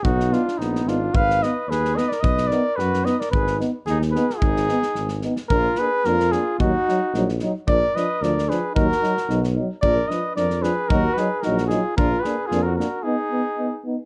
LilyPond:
<<
  \new Staff \with { instrumentName = "Flugelhorn" } { \time 2/4 \tempo 4 = 111 fis'8 f'8 dis'8 f'8 | f''8 ees''8 ces''8 ees''16 d''16 | dis''8 d''8 b'8 dis''16 d''16 | ces''8 r8 aes'8 ces''8 |
aes'4. r8 | bes'8 ces''8 bes'8 aes'8 | ges'4. r8 | d''8 ees''8 d''8 ces''8 |
bes'4. r8 | d''8 ees''8 d''8 ces''8 | bes'8 ces''8 bes'8 aes'8 | bes'8 ces''8 aes'16 bes'16 bes'8 |
aes'4. r8 | }
  \new Staff \with { instrumentName = "Trumpet" } { \time 2/4 dis'8 d'8 b8 d'8 | ces''8 ces''8 aes'8 ces''16 bes'16 | b'8 bes'8 fis'8 b'16 bes'16 | aes'8 r8 ees'8 aes'8 |
ees'4. r8 | f'8 aes'8 f'8 f'8 | ees'4. r8 | bes'8 ces''8 bes'8 aes'8 |
ges'4. r8 | bes'8 ces''8 bes'8 aes'8 | ges'8 aes'8 ges'8 f'8 | f'8 aes'8 f'16 ges'16 ges'8 |
ees'4. r8 | }
  \new Staff \with { instrumentName = "Euphonium" } { \time 2/4 r8 dis'8 r8 dis'8 | r8 ees'8 r8 ees'8 | r8 dis'8 r8 dis'8 | r8 ees'8 r8 ees'8 |
r8 ees'8 r8 ees'8 | d'8 d'8 d'8 d'8 | ees'8 ees'8 ees'8 ees'8 | d'8 d'8 d'8 d'8 |
ees'8 ees'8 ees'8 ees'8 | d'8 d'8 d'8 d'8 | ees'8 ees'8 ees'8 ees'8 | d'8 d'8 d'8 d'8 |
ees'8 ees'8 ees'8 ees'8 | }
  \new Staff \with { instrumentName = "Trombone" } { \time 2/4 r8 b8 r8 b8 | r8 ces'8 r8 ces'8 | r8 b8 r8 b8 | r8 ces'8 r8 ces'8 |
r8 ces'8 r8 ces'8 | bes8 bes8 bes8 bes8 | ges8 ges8 ges8 ges8 | f8 f8 f8 f8 |
ges8 ges8 ges8 ges8 | f8 f8 f8 f8 | ges8 ges8 ges8 ges8 | bes8 bes8 bes8 bes8 |
ces'8 ces'8 ces'8 ces'8 | }
  \new Staff \with { instrumentName = "Tuba" } { \clef bass \time 2/4 b,,4 bes,,8 aes,,8 | aes,,4 ees,4 | b,,4 fis,4 | aes,,4 ees,4 |
aes,,4 aes,,4 | bes,,8 r8 f,4 | ees,8 r8 bes,,4 | bes,,8 r8 d,4 |
ees,8 r8 ces,4 | bes,,8 r8 f,4 | ees,8 r8 bes,,4 | bes,,8 r8 f,4 |
r2 | }
  \new DrumStaff \with { instrumentName = "Drums" } \drummode { \time 2/4 bd16 sn16 sn16 sn16 sn16 sn16 sn8 | bd16 sn16 sn8 sn16 sn16 sn16 sn16 | bd16 sn16 sn8 sn16 sn16 sn16 sn16 | bd16 sn16 sn8 sn16 sn16 sn16 sn16 |
bd16 sn16 sn16 sn16 sn16 sn16 sn16 sn16 | bd8 sn8 sn16 sn16 sn8 | bd8 sn8 sn16 sn16 sn8 | bd8 sn8 sn16 sn16 sn8 |
bd16 sn16 sn16 sn16 sn16 sn8. | bd8 sn8 sn16 sn16 sn8 | bd8 sn8 sn16 sn16 sn8 | bd8 sn8 sn8 sn8 |
r4 r4 | }
>>